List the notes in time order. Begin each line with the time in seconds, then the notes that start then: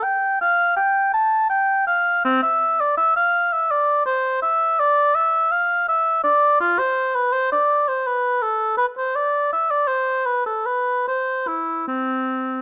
0.03 G5
0.41 F5
0.77 G5
1.14 A5
1.50 G5
1.87 F5
2.25 C4
2.43 E5
2.81 D5
2.97 E5
3.16 F5
3.53 E5
3.71 D5
4.05 C5
4.42 E5
4.80 D5
5.15 E5
5.52 F5
5.88 E5
6.24 D5
6.60 F4
6.79 C5
7.15 B4
7.32 C5
7.52 D5
7.88 C5
8.07 B4
8.42 A4
8.78 B4
8.98 C5
9.16 D5
9.53 E5
9.71 D5
9.88 C5
10.26 B4
10.46 A4
10.66 B4
11.08 C5
11.48 E4
11.88 C4